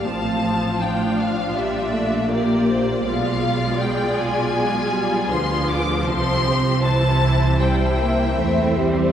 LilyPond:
<<
  \new Staff \with { instrumentName = "Violin section" } { \time 4/4 \key c \mixolydian \tempo 4 = 79 a''4 g''8 f''8 e''4 d''4 | f''4 g''8 gis''4. c'''8 d'''8 | c'''4 a''4 g''4. r8 | }
  \new Staff \with { instrumentName = "Violin section" } { \time 4/4 \key c \mixolydian << { f''4 f''4 d''4 bes'8 c''8 | d''2. b'4 | c''4 c''4 e''2 | } \\ { f'1 | f'4 gis'4 gis'2 | a'8 g'8 c''2 c''4 | } >> }
  \new Staff \with { instrumentName = "Viola section" } { \time 4/4 \key c \mixolydian << { c'4 d'4 d'4 g'4 | f'2. f'4 | c'4 e'4 e'4 c'4 | } \\ { f8 f4. g8 a8 bes4 | gis2 gis8 g8 f4~ | f4 e4 g8 bes8 a8 g8 | } >> }
  \new Staff \with { instrumentName = "Cello section" } { \clef bass \time 4/4 \key c \mixolydian a,2 bes,2 | b,2. d4 | c2. e4 | }
  \new Staff \with { instrumentName = "Double bass section" } { \clef bass \time 4/4 \key c \mixolydian a,,2 bes,,2 | b,,2. d,4 | c,2. e,4 | }
>>